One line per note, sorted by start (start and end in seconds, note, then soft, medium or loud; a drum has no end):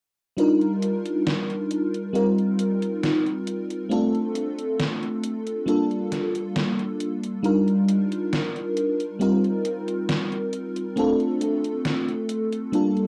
0.37 2.06 G3 medium
0.37 2.06 D4 medium
0.37 2.06 D#4 medium
0.37 2.07 F4 medium
0.37 2.07 A#4 medium
0.37 closed hi-hat medium
0.61 closed hi-hat soft
0.82 closed hi-hat medium
1.05 closed hi-hat medium
1.27 snare loud
1.27 closed hi-hat soft
1.50 closed hi-hat soft
1.71 closed hi-hat medium
1.94 closed hi-hat medium
2.13 3.82 G3 medium
2.13 3.82 C4 medium
2.13 3.83 D#4 medium
2.13 3.83 F4 medium
2.13 3.84 A#4 medium
2.13 closed hi-hat soft
2.38 closed hi-hat soft
2.59 closed hi-hat medium
2.82 closed hi-hat soft
3.03 snare loud
3.03 closed hi-hat medium
3.26 closed hi-hat soft
3.47 closed hi-hat medium
3.70 closed hi-hat medium
3.89 5.58 A3 medium
3.89 5.59 C4 medium
3.89 5.59 D4 medium
3.89 5.60 F4 medium
3.89 5.60 A4 medium
3.89 closed hi-hat soft
4.15 closed hi-hat soft
4.35 closed hi-hat medium
4.59 closed hi-hat medium
4.80 snare loud
4.80 closed hi-hat medium
5.03 closed hi-hat soft
5.24 closed hi-hat medium
5.47 closed hi-hat medium
5.66 7.35 G3 medium
5.66 7.35 A#3 medium
5.66 7.36 D4 medium
5.66 7.36 F4 medium
5.66 7.37 A4 medium
5.66 closed hi-hat soft
5.91 closed hi-hat soft
6.12 snare medium
6.12 closed hi-hat medium
6.35 closed hi-hat soft
6.56 snare loud
6.56 closed hi-hat soft
6.79 closed hi-hat soft
7.00 closed hi-hat medium
7.24 closed hi-hat medium
7.43 9.12 G3 medium
7.43 9.12 D4 medium
7.43 9.12 D#4 medium
7.43 9.13 F4 medium
7.43 9.13 A#4 medium
7.43 closed hi-hat medium
7.68 closed hi-hat soft
7.88 closed hi-hat medium
8.12 closed hi-hat medium
8.33 snare loud
8.33 closed hi-hat soft
8.56 closed hi-hat soft
8.77 closed hi-hat medium
9.00 closed hi-hat medium
9.19 10.88 G3 medium
9.19 10.88 C4 medium
9.19 10.89 D#4 medium
9.19 10.89 F4 medium
9.19 10.90 A#4 medium
9.19 closed hi-hat soft
9.44 closed hi-hat soft
9.65 closed hi-hat medium
9.88 closed hi-hat soft
10.09 snare loud
10.09 closed hi-hat soft
10.32 closed hi-hat soft
10.53 closed hi-hat medium
10.76 closed hi-hat medium
10.96 12.65 A3 medium
10.96 12.65 C4 medium
10.96 12.65 D4 medium
10.96 12.66 F4 medium
10.96 12.66 A4 medium
10.96 closed hi-hat soft
11.20 closed hi-hat soft
11.41 closed hi-hat medium
11.64 closed hi-hat soft
11.85 snare loud
11.85 closed hi-hat soft
12.09 closed hi-hat soft
12.29 closed hi-hat medium
12.53 closed hi-hat soft
12.72 13.07 G3 medium
12.72 13.07 A#3 medium
12.72 13.07 D4 medium
12.72 13.07 F4 medium
12.72 13.07 A4 medium
12.72 closed hi-hat soft
12.97 closed hi-hat soft